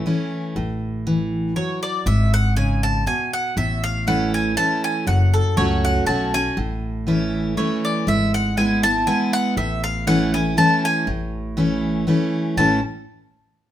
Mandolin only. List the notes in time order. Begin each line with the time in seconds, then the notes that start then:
1.56 C#5
1.83 D5
2.07 E5
2.34 F#5
2.57 G#5
2.83 A5
3.07 G#5
3.33 F#5
3.57 E5
3.84 F5
4.08 F#5
4.34 G#5
4.57 A5
4.84 G#5
5.07 F#5
5.34 A4
5.57 C#5
5.85 F#5
6.07 A5
6.34 G#5
7.57 C#5
7.85 D5
8.08 E5
8.34 F#5
8.57 G#5
8.83 A5
9.07 G#5
9.33 F#5
9.57 E5
9.84 F5
10.07 F#5
10.34 G#5
10.58 A5
10.85 G#5
12.58 A5